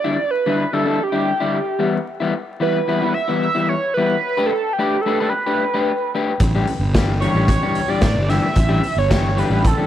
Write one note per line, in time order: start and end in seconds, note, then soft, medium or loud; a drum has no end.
0.00 0.32 D5 loud
0.04 0.17 D3 medium
0.04 0.17 G3 medium
0.04 0.18 D4 medium
0.04 0.18 E4 loud
0.18 muted clean electric guitar stroke soft
0.31 0.75 B4 medium
0.46 0.63 D3 medium
0.46 0.63 G3 medium
0.46 0.64 D4 medium
0.46 0.64 E4 medium
0.73 0.86 D3 medium
0.73 0.85 G3 medium
0.73 0.85 D4 medium
0.73 0.85 E4 medium
0.73 1.05 A4 medium
0.86 0.99 D3 medium
0.86 0.99 G3 medium
0.86 0.99 D4 medium
0.86 0.99 E4 medium
1.00 1.82 G4 medium
1.00 muted clean electric guitar stroke soft
1.12 1.31 D3 medium
1.12 1.31 G3 medium
1.12 1.30 D4 medium
1.12 1.30 E4 medium
1.40 1.58 D3 medium
1.40 1.58 G3 medium
1.40 1.58 D4 medium
1.40 1.57 E4 medium
1.79 1.97 E3 medium
1.79 1.97 G3 medium
1.79 1.97 B3 medium
1.79 1.98 E4 medium
2.20 2.33 E3 medium
2.20 2.34 G3 medium
2.20 2.34 B3 medium
2.20 2.34 E4 medium
2.34 muted clean electric guitar stroke soft
2.60 2.78 E3 medium
2.60 2.79 G3 medium
2.60 2.79 B3 medium
2.60 2.79 E4 medium
2.60 2.87 B4 medium
2.88 3.02 E3 medium
2.88 3.01 G3 medium
2.88 3.01 B3 medium
2.88 3.01 E4 medium
2.88 3.15 B4 medium
3.02 3.14 E3 medium
3.02 3.14 G3 medium
3.02 3.13 B3 medium
3.02 3.14 E4 medium
3.14 3.42 E5 loud
3.14 muted clean electric guitar stroke soft
3.28 3.46 E3 medium
3.28 3.46 G3 medium
3.28 3.46 B3 medium
3.28 3.46 E4 medium
3.43 3.70 E5 loud
3.55 3.74 E3 medium
3.55 3.74 G3 medium
3.55 3.73 B3 medium
3.55 3.73 E4 medium
3.69 3.93 C#5 loud
3.94 4.14 E3 medium
3.94 4.14 G3 medium
3.94 4.15 B3 medium
3.94 4.20 B4 medium
3.98 4.15 E4 medium
4.20 4.48 B4 loud
4.37 4.50 A3 medium
4.37 4.51 D4 medium
4.37 4.51 G4 medium
4.37 4.51 B4 loud
4.46 4.74 A4 medium
4.52 muted clean electric guitar stroke soft
4.73 5.03 G4 medium
4.79 4.96 A3 medium
4.79 4.96 D4 medium
4.79 4.96 G4 medium
4.79 4.96 B4 medium
5.01 5.31 A4 medium
5.06 5.19 A3 medium
5.06 5.19 D4 medium
5.06 5.19 G4 medium
5.06 5.19 B4 medium
5.20 5.32 A3 medium
5.20 5.32 D4 medium
5.20 5.33 G4 medium
5.20 5.33 B4 medium
5.29 6.12 B4 medium
5.33 muted clean electric guitar stroke soft
5.46 5.64 A3 medium
5.46 5.64 D4 medium
5.46 5.63 G4 medium
5.46 5.63 B4 medium
5.74 5.91 A3 medium
5.74 5.91 D4 medium
5.74 5.91 G4 medium
5.74 5.91 B4 medium
6.15 6.31 A3 medium
6.15 6.31 D4 medium
6.15 6.32 G4 medium
6.15 6.32 B4 medium
6.40 6.63 A1 medium
6.40 kick loud
6.40 closed hi-hat medium
6.55 6.67 E3 medium
6.55 6.67 G3 medium
6.55 6.68 D4 medium
6.55 6.68 G4 medium
6.67 muted clean electric guitar stroke soft
6.67 closed hi-hat soft
6.79 7.25 G1 medium
6.94 7.12 E3 medium
6.94 7.13 G3 medium
6.94 7.13 D4 medium
6.94 7.13 G4 medium
6.94 kick medium
6.94 snare loud
6.94 closed hi-hat medium
7.20 7.35 E3 medium
7.20 7.35 G3 medium
7.20 7.35 D4 medium
7.20 7.34 G4 medium
7.20 7.46 C#5 medium
7.20 closed hi-hat medium
7.34 7.57 A1 medium
7.34 7.48 E3 medium
7.34 7.49 G3 medium
7.34 7.49 D4 medium
7.34 7.48 G4 medium
7.48 7.91 C#5 medium
7.48 muted clean electric guitar stroke soft
7.48 kick loud
7.48 closed hi-hat medium
7.63 7.80 E3 medium
7.63 7.80 G3 medium
7.63 7.80 D4 medium
7.63 7.80 G4 medium
7.75 closed hi-hat medium
7.88 8.07 E3 medium
7.88 8.06 G3 medium
7.88 8.06 D4 medium
7.88 8.06 G4 medium
7.88 8.31 D5 medium
8.01 8.16 A2 medium
8.01 kick medium
8.01 snare loud
8.01 closed hi-hat medium
8.15 8.38 G1 medium
8.29 8.47 E3 medium
8.29 8.47 G3 medium
8.29 8.47 D4 medium
8.29 8.47 G4 medium
8.29 9.00 E5 loud
8.29 snare soft
8.29 closed hi-hat medium
8.56 8.79 A1 medium
8.56 kick medium
8.56 closed hi-hat medium
8.69 8.81 E3 medium
8.69 8.81 G3 medium
8.69 8.82 D4 medium
8.69 8.82 G4 loud
8.82 muted clean electric guitar stroke soft
8.82 closed hi-hat medium
8.96 9.42 G1 medium
8.96 9.41 C#5 medium
9.10 9.27 E3 medium
9.10 9.28 G3 medium
9.10 9.28 D4 medium
9.10 9.28 G4 medium
9.10 kick medium
9.10 snare loud
9.10 closed hi-hat medium
9.36 9.50 E3 medium
9.36 9.50 G3 medium
9.36 9.50 D4 medium
9.36 9.49 G4 medium
9.36 9.65 B4 medium
9.36 closed hi-hat medium
9.50 9.73 A1 medium
9.50 9.62 E3 medium
9.50 9.62 G3 medium
9.50 9.63 D4 medium
9.50 9.63 G4 medium
9.63 9.87 A4 medium
9.63 muted clean electric guitar stroke soft
9.63 kick loud
9.63 closed hi-hat medium
9.78 9.87 E3 medium
9.78 9.87 G3 medium
9.78 9.87 D4 medium
9.78 9.87 G4 medium